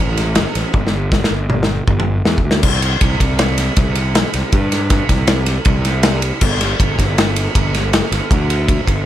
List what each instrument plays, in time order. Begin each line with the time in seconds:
0.00 fingered electric bass A1
0.17 snare, ride
0.35 fingered electric bass G1, snare, ride
0.55 fingered electric bass A1, snare, ride
0.74 fingered electric bass G1, kick, high tom
0.87 snare
1.12 kick, snare
1.24 snare
1.31 fingered electric bass G1
1.50 mid tom
1.63 snare
1.88 fingered electric bass G1, kick, mid tom
2.00 mid tom
2.25 fingered electric bass E2, snare
2.38 kick
2.44 fingered electric bass D2
2.51 snare
2.63 fingered electric bass C2, kick, crash
2.82 ride
3.01 fingered electric bass C2, kick, ride
3.20 fingered electric bass C2, kick, ride
3.39 snare, ride
3.58 snare, ride
3.76 fingered electric bass C2, kick, snare, ride
3.95 ride
4.15 fingered electric bass B1, snare, ride
4.34 fingered electric bass C2, snare, ride
4.52 fingered electric bass G2, kick, ride
4.72 snare, ride
4.90 kick, snare, ride
5.09 fingered electric bass C2, kick, snare, ride
5.27 snare, ride
5.46 snare, ride
5.65 fingered electric bass C2, kick, ride
5.85 snare, ride
6.03 snare, ride
6.22 ride
6.41 fingered electric bass G1, kick, crash
6.61 snare, ride
6.80 fingered electric bass G1, kick, ride
6.99 fingered electric bass G1, kick, snare, ride
7.18 snare, ride
7.36 ride
7.55 fingered electric bass G1, kick, ride
7.74 snare, ride
7.93 fingered electric bass F#1, snare, ride
8.12 fingered electric bass G1, snare, ride
8.31 fingered electric bass D2, kick, ride
8.50 ride
8.68 kick, ride
8.88 fingered electric bass G1, kick, ride